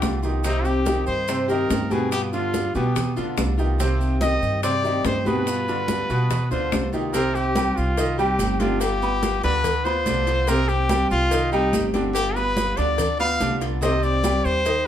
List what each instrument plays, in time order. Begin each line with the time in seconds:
Already playing: grand piano D3 D4 F4, trumpet G4
0.01 upright bass C2, nylon-string guitar G3 B3 F4, high bongo, low bongo, high conga, maracas
0.22 grand piano D#3 D#4 G4, nylon-string guitar B3 F4, high bongo, maracas
0.43 nylon-string guitar C3 D#3 A#3 C4 G4, grand piano C3 C4 C5, trumpet D#4, high bongo, high conga, maracas
0.65 trumpet G4, high conga, maracas
0.85 nylon-string guitar D#3 A#3 C4 G4, grand piano D#3 D#4 G4, high bongo, high conga, maracas
1.07 upright bass G2, trumpet C5, high conga, maracas
1.28 grand piano C3 C4 C5, muted nylon-string guitar stroke, high bongo, high conga, maracas
1.48 grand piano D#3 D#4 G4, nylon-string guitar D#3 A#3 C4 G4, trumpet A#4, high conga, maracas
1.69 upright bass G2, nylon-string guitar D#3 A#3 C4 G4, high bongo, low bongo, high conga, maracas
1.90 grand piano B2 B3 B4, nylon-string guitar D#3 A#3 C4 G4, trumpet G#4, high conga, maracas
2.11 nylon-string guitar G3 B3 F4, trumpet G4, high bongo, high conga, maracas
2.33 grand piano D3 D4 F4, trumpet F4, high bongo, high conga, maracas
2.53 nylon-string guitar G3 B3 F4, high bongo, high conga, maracas
2.75 upright bass B2, grand piano B2 B3 B4, trumpet G4, high conga, maracas
2.95 muted nylon-string guitar stroke, high bongo, high conga, low conga, maracas
3.16 upright bass D2, grand piano D3 D4 F4, nylon-string guitar B3 F4, high bongo, high conga, maracas
3.37 upright bass C2, nylon-string guitar G3 B3 F4, high bongo, low bongo, high conga, maracas
3.58 grand piano D#3 D#4 G4, nylon-string guitar B3 F4, high bongo, maracas
3.78 nylon-string guitar C3 D#3 A#3 C4 G4, grand piano C3 C4 C5, high bongo, high conga, maracas
4.00 high conga, maracas
4.21 nylon-string guitar D#3 A#3 C4 G4, grand piano D#3 D#4 G4, trumpet D#5, high bongo, high conga, maracas
4.42 upright bass G2, high conga, maracas
4.63 grand piano C3 C4 C5, trumpet D5, muted nylon-string guitar stroke, high bongo, high conga, maracas
4.83 grand piano D#3 D#4 G4, nylon-string guitar D#3 A#3 C4 G4, high conga, maracas
5.05 upright bass G2, trumpet C5, high bongo, low bongo, high conga, maracas
5.25 grand piano B2 B3 B4, nylon-string guitar D#3 A#3 C4 G4, trumpet B4, high conga, maracas
5.46 nylon-string guitar G3 B3 F4, high bongo, high conga, maracas
5.68 grand piano D3 D4 F4, high bongo, high conga, maracas
5.88 nylon-string guitar G3 B3 F4, high bongo, high conga, maracas
6.09 upright bass B2, grand piano B2 B3 B4, high conga, maracas
6.30 muted nylon-string guitar stroke, high bongo, high conga, low conga, maracas
6.51 upright bass D2, grand piano D3 D4 F4, nylon-string guitar B3 F4, trumpet C5, high bongo, high conga, maracas
6.72 upright bass C2, nylon-string guitar G3 B3 F4, high bongo, low bongo, high conga, maracas
6.92 grand piano D#3 D#4 G4, nylon-string guitar B3 F4, high bongo, high conga, maracas
7.13 nylon-string guitar C3 D#3 A#3 C4 G4, grand piano C3 C4 C5, trumpet A#4, cowbell, high conga, maracas
7.35 trumpet G4, high conga, maracas
7.55 nylon-string guitar D#3 A#3 C4 G4, grand piano G3 G4 G5, cowbell, high conga, maracas
7.76 upright bass C2, trumpet F4, high conga, maracas
7.97 grand piano D#3 D#4 D#5, muted nylon-string guitar stroke, cowbell, high conga, maracas
8.18 nylon-string guitar D#3 A#3 C4 G4, grand piano G3 G4 G5, trumpet G4, high conga, maracas
8.38 upright bass G1, nylon-string guitar D#3 A#3 C4 G4, cowbell, high conga, maracas
8.60 grand piano D3 D4 D5, nylon-string guitar D#3 A#3 C4 G4, trumpet F4, cowbell, high conga, maracas
8.80 nylon-string guitar G3 B3 F4, trumpet G4, cowbell, high conga, maracas
9.02 grand piano B3 B4 B5, high conga, maracas
9.22 nylon-string guitar G3 B3 F4, cowbell, high conga, maracas
9.43 upright bass D2, grand piano D3 D4 D5, trumpet B4, cowbell, high conga, maracas
9.64 muted nylon-string guitar stroke, cowbell, high conga, low conga, maracas
9.85 grand piano B3 B4 B5, nylon-string guitar B3 F4, trumpet C5, high conga, maracas
10.06 upright bass C2, grand piano D3 D4 D5, nylon-string guitar G3 B3 F4, cowbell, high conga, maracas
10.27 nylon-string guitar B3 F4, cowbell, maracas
10.47 nylon-string guitar C3 D#3 A#3 C4 G4, grand piano C3 C4 C5, trumpet A#4, cowbell, high conga, maracas
10.69 trumpet G4, high conga, maracas
10.89 nylon-string guitar D#3 A#3 C4 G4, grand piano G3 G4 G5, cowbell, high conga, maracas
11.11 upright bass C2, trumpet F4, high conga, maracas
11.31 grand piano D#3 D#4 D#5, muted nylon-string guitar stroke, cowbell, high conga, maracas
11.52 nylon-string guitar D#3 A#3 C4 G4, grand piano G3 G4 G5, trumpet D#4, high conga, maracas
11.73 upright bass G1, nylon-string guitar D#3 A#3 C4 G4, cowbell, high conga, maracas
11.93 grand piano D3 D4 D5, nylon-string guitar D#3 A#3 C4 G4, cowbell, high conga, maracas
12.14 nylon-string guitar G3 B3 F4, trumpet G4, cowbell, maracas
12.36 grand piano B3 B4 B5, trumpet B4, high conga, maracas
12.56 nylon-string guitar G3 B3 F4, cowbell, high conga, maracas
12.77 upright bass D2, grand piano D3 D4 D5, trumpet D5, cowbell, high conga, maracas
12.98 muted nylon-string guitar stroke, cowbell, high conga, low conga, maracas
13.19 grand piano B3 B4 B5, nylon-string guitar B3 F4, trumpet F5, high conga, maracas
13.40 upright bass C2, grand piano D3 D4 D5, nylon-string guitar G3 B3 F4, cowbell, high conga, maracas
13.61 nylon-string guitar B3 F4, cowbell, maracas
13.81 nylon-string guitar C3 D#3 A#3 C4 G4, grand piano C3 C4 C5, trumpet D#5, cowbell, high conga, maracas
14.03 trumpet D5, high conga, maracas
14.23 nylon-string guitar D#3 A#3 C4 G4, grand piano G3 G4 G5, cowbell, high conga, maracas
14.44 upright bass D#2, trumpet C5, high conga, maracas
14.65 grand piano D#3 D#4 D#5, muted nylon-string guitar stroke, cowbell, high conga, maracas